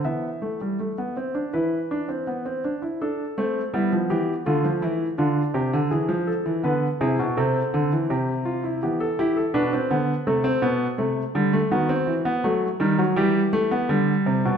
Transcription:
<<
  \new Staff \with { instrumentName = "Grand piano" } { \time 4/4 \key a \minor \tempo 4 = 82 e''2 b'4. r8 | a'4 e'8 g'8 f'8 e'8 f'8 g'8 | gis'8 a'8 b'8 gis'8 a'4 g'8 f'16 e'16 | g'16 a'16 g'16 a'16 b'4 a'2 |
fis'2 g'2 | }
  \new Staff \with { instrumentName = "Grand piano" } { \clef bass \time 4/4 \key a \minor << { b8 a16 g16 a16 b16 c'16 d'16 e'8 d'16 c'16 b16 c'16 d'16 e'16 | d'8 c'8 b4 a4 d'4~ | d'4 b8 e'8 c'2 | b8 e'8 d'16 c'16 b8 a16 c'16 b8 a8 g16 a16 |
b16 c'8 b16 a8 g16 fis16 g8 a16 b16 g4 | } \\ { e2 e4. r8 | r8 a8 g16 f16 e8 d16 f16 e8 d8 c16 d16 | e16 f8 e16 d8 c16 b,16 c8 d16 e16 c4 | e4 b,8 d8 c8 b,8 c8 d8 |
dis8 e8 fis8 dis8 e4 d8 c16 b,16 | } >> }
>>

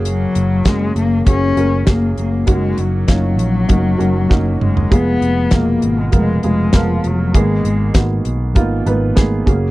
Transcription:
<<
  \new Staff \with { instrumentName = "Upright piano" } { \time 4/4 \key aes \dorian \tempo 4 = 99 <bes des' ges' aes'>4 <bes des' ges' aes'>4 <bes des' ges' aes'>8 <bes des' ges' bes'>8 <bes des' ges' aes'>4 | <bes des' ees' ges'>4 <bes des' ees' f'>4 <bes des' ees' ges'>8 <bes des' ees' ges'>8 <bes des' ees' ges'>4 | <aes ces' f' aes'>4 <ces aes f' bes'>4 <aes ces' f' bes'>8 <aes ces' f' aes'>8 <aes ces' f' bes'>4 | <bes ces' ees' aes'>4 <bes ces' ees' ges'>4 <bes ces' ees' f'>8 <bes ces' ees' ces''>8 <bes ces' ees' aes'>8 <bes des' ges' aes'>8 | }
  \new Staff \with { instrumentName = "Upright piano" } { \clef bass \time 4/4 \key aes \dorian des4 r2. | ges4. r2 r8 | f4. r2 r8 | <aes, ees>4. r2 des8 | }
  \new Staff \with { instrumentName = "Cello" } { \clef bass \time 4/4 \key aes \dorian ges4 aes8 bes8 des'4 bes8 bes8 | aes8 ges2. aes8 | ces'4 bes8. aes16 aes8 aes8 f8 ges8 | aes4 r2. | }
  \new Staff \with { instrumentName = "Picked electric bass" } { \clef bass \time 4/4 \key aes \dorian ges,,8 ges,,8 ges,,8 ges,,8 ges,,8 ges,,8 ges,,8 ges,,8 | ges,,8 ges,,8 ges,,8 bes,,8 ges,,8 ges,,8 ges,,8 ges,,8 | f,,8 f,,8 f,,8 aes,,8 f,,8 f,,8 f,,8 f,,8 | aes,,8 aes,,8 aes,,8 ces,8 aes,,8 aes,,8 aes,,8 ges,,8 | }
  \new DrumStaff \with { instrumentName = "Drums" } \drummode { \time 4/4 hh8 hh8 <hh bd sn>8 hh8 <hh bd>8 hh8 <hh bd sn>8 hh8 | <hh bd>8 hh8 <hh bd sn>8 hh8 <hh bd>8 hh8 <bd sn>8 toml16 tomfh16 | <hh bd>8 hh8 <hh bd sn>8 hh8 <hh bd>8 hh8 <hh bd sn>8 hh8 | <hh bd>8 hh8 <hh bd sn>8 hh8 <hh bd>8 hh8 <hh bd sn>8 <hh bd>8 | }
>>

